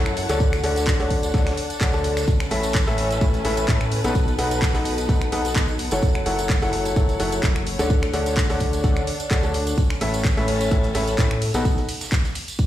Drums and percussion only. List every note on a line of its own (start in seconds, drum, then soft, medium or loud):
0.06 finger snap medium
0.06 tambourine soft
0.17 closed hi-hat medium
0.17 open hi-hat loud
0.29 snare medium
0.29 closed hi-hat medium
0.29 tambourine medium
0.40 kick loud
0.40 closed hi-hat medium
0.40 tambourine medium
0.53 finger snap medium
0.53 closed hi-hat soft
0.53 tambourine soft
0.64 closed hi-hat medium
0.64 open hi-hat loud
0.76 snare medium
0.76 closed hi-hat medium
0.76 tambourine medium
0.87 kick loud
0.87 snare loud
0.87 clap loud
0.87 closed hi-hat medium
0.87 tambourine medium
1.00 snare soft
1.00 open hi-hat medium
1.00 tambourine soft
1.10 kick medium
1.10 closed hi-hat medium
1.10 open hi-hat loud
1.23 closed hi-hat medium
1.23 tambourine medium
1.34 kick loud
1.34 snare loud
1.34 closed hi-hat medium
1.34 tambourine medium
1.47 finger snap medium
1.47 snare loud
1.47 closed hi-hat medium
1.47 open hi-hat medium
1.47 tambourine soft
1.57 closed hi-hat medium
1.57 open hi-hat loud
1.70 closed hi-hat medium
1.70 tambourine medium
1.80 kick loud
1.80 snare loud
1.80 clap loud
1.80 closed hi-hat medium
1.80 tambourine medium
1.93 snare soft
1.93 tambourine soft
2.04 closed hi-hat medium
2.04 open hi-hat loud
2.17 finger snap medium
2.17 snare loud
2.17 closed hi-hat medium
2.17 tambourine medium
2.28 kick loud
2.28 closed hi-hat medium
2.28 tambourine medium
2.40 finger snap medium
2.40 closed hi-hat soft
2.40 tambourine soft
2.51 closed hi-hat medium
2.51 open hi-hat loud
2.63 closed hi-hat medium
2.63 tambourine medium
2.74 kick loud
2.74 snare loud
2.74 clap loud
2.74 closed hi-hat medium
2.74 tambourine medium
2.87 snare medium
2.87 open hi-hat medium
2.87 tambourine soft
2.98 snare medium
2.98 closed hi-hat medium
2.98 open hi-hat loud
3.11 closed hi-hat medium
3.11 tambourine medium
3.21 kick loud
3.21 closed hi-hat medium
3.21 tambourine medium
3.34 closed hi-hat medium
3.34 closed hi-hat soft
3.34 tambourine soft
3.45 closed hi-hat medium
3.45 open hi-hat loud
3.57 closed hi-hat medium
3.57 tambourine medium
3.68 kick loud
3.68 snare loud
3.68 clap loud
3.68 closed hi-hat medium
3.68 tambourine medium
3.81 finger snap medium
3.81 tambourine soft
3.92 closed hi-hat medium
3.92 open hi-hat loud
4.04 snare medium
4.04 closed hi-hat medium
4.04 tambourine medium
4.15 kick loud
4.15 closed hi-hat medium
4.15 tambourine medium
4.28 closed hi-hat soft
4.28 tambourine soft
4.39 closed hi-hat medium
4.39 open hi-hat loud
4.51 snare medium
4.51 closed hi-hat medium
4.51 tambourine medium
4.62 kick loud
4.62 snare loud
4.62 clap loud
4.62 closed hi-hat medium
4.62 tambourine medium
4.75 snare soft
4.75 open hi-hat medium
4.75 tambourine soft
4.85 closed hi-hat medium
4.85 open hi-hat loud
4.98 closed hi-hat medium
4.98 tambourine medium
5.09 kick loud
5.09 closed hi-hat medium
5.09 tambourine medium
5.21 finger snap medium
5.21 closed hi-hat medium
5.21 tambourine soft
5.32 closed hi-hat medium
5.32 open hi-hat loud
5.45 closed hi-hat medium
5.45 tambourine medium
5.56 kick loud
5.56 snare loud
5.56 clap loud
5.56 closed hi-hat medium
5.56 tambourine medium
5.68 tambourine soft
5.79 closed hi-hat medium
5.79 open hi-hat loud
5.91 closed hi-hat medium
5.91 tambourine medium
6.02 kick loud
6.02 closed hi-hat medium
6.02 tambourine medium
6.15 finger snap medium
6.15 closed hi-hat soft
6.15 tambourine soft
6.26 closed hi-hat medium
6.26 open hi-hat loud
6.39 closed hi-hat medium
6.39 tambourine medium
6.49 kick loud
6.49 snare loud
6.49 clap loud
6.49 closed hi-hat medium
6.49 tambourine medium
6.62 snare medium
6.62 open hi-hat medium
6.62 tambourine soft
6.73 snare medium
6.73 closed hi-hat medium
6.73 open hi-hat loud
6.85 closed hi-hat medium
6.85 tambourine medium
6.96 kick loud
6.96 closed hi-hat medium
6.96 tambourine medium
7.09 closed hi-hat medium
7.09 closed hi-hat soft
7.09 tambourine soft
7.20 closed hi-hat medium
7.20 open hi-hat loud
7.32 closed hi-hat medium
7.32 tambourine medium
7.43 kick loud
7.43 snare loud
7.43 clap loud
7.43 closed hi-hat medium
7.43 tambourine medium
7.56 finger snap medium
7.56 tambourine soft
7.67 closed hi-hat medium
7.67 open hi-hat loud
7.79 snare medium
7.79 closed hi-hat medium
7.79 tambourine medium
7.90 kick loud
7.90 closed hi-hat medium
7.90 tambourine medium
8.03 finger snap medium
8.03 closed hi-hat soft
8.03 tambourine soft
8.13 closed hi-hat medium
8.13 open hi-hat loud
8.26 snare medium
8.26 closed hi-hat medium
8.26 tambourine medium
8.37 kick loud
8.37 snare loud
8.37 clap loud
8.37 closed hi-hat medium
8.37 tambourine medium
8.50 open hi-hat medium
8.50 tambourine soft
8.60 kick medium
8.60 closed hi-hat medium
8.60 open hi-hat loud
8.73 closed hi-hat medium
8.73 tambourine medium
8.84 kick loud
8.84 closed hi-hat medium
8.84 tambourine medium
8.97 finger snap medium
8.97 closed hi-hat medium
8.97 tambourine soft
9.07 closed hi-hat medium
9.07 open hi-hat loud
9.20 closed hi-hat medium
9.20 tambourine medium
9.31 kick loud
9.31 snare loud
9.31 clap loud
9.31 closed hi-hat medium
9.31 tambourine medium
9.43 tambourine soft
9.54 closed hi-hat medium
9.54 open hi-hat loud
9.67 closed hi-hat medium
9.67 tambourine medium
9.78 kick loud
9.78 closed hi-hat medium
9.78 ride medium
9.78 tambourine medium
9.90 finger snap medium
9.90 closed hi-hat soft
9.90 tambourine soft
10.01 closed hi-hat medium
10.01 open hi-hat loud
10.01 ride medium
10.14 closed hi-hat medium
10.14 tambourine medium
10.24 kick loud
10.24 snare loud
10.24 clap loud
10.24 closed hi-hat medium
10.24 ride medium
10.24 tambourine medium
10.37 snare soft
10.37 open hi-hat medium
10.37 tambourine soft
10.48 snare medium
10.48 closed hi-hat medium
10.48 open hi-hat loud
10.48 ride medium
10.61 closed hi-hat medium
10.61 tambourine medium
10.71 kick loud
10.71 closed hi-hat medium
10.71 ride medium
10.71 tambourine medium
10.83 closed hi-hat soft
10.83 closed hi-hat medium
10.83 tambourine soft
10.95 closed hi-hat medium
10.95 open hi-hat loud
10.95 ride medium
11.08 closed hi-hat medium
11.08 tambourine medium
11.18 kick loud
11.18 snare loud
11.18 clap loud
11.18 closed hi-hat medium
11.18 ride medium
11.18 tambourine medium
11.31 finger snap medium
11.31 tambourine soft
11.42 closed hi-hat medium
11.42 open hi-hat loud
11.42 ride medium
11.54 snare medium
11.54 closed hi-hat medium
11.54 tambourine medium
11.65 kick loud
11.65 closed hi-hat medium
11.65 ride medium
11.65 tambourine medium
11.78 closed hi-hat soft
11.78 tambourine soft
11.89 closed hi-hat medium
11.89 open hi-hat loud
11.89 ride medium
12.01 snare medium
12.01 closed hi-hat medium
12.01 tambourine medium
12.12 kick loud
12.12 snare loud
12.12 clap loud
12.12 closed hi-hat medium
12.12 ride medium
12.12 tambourine medium
12.25 snare soft
12.25 open hi-hat medium
12.25 tambourine soft
12.35 closed hi-hat medium
12.35 open hi-hat loud
12.35 ride medium
12.48 closed hi-hat medium
12.48 tambourine medium
12.58 kick loud
12.58 closed hi-hat medium
12.58 ride medium
12.58 tambourine medium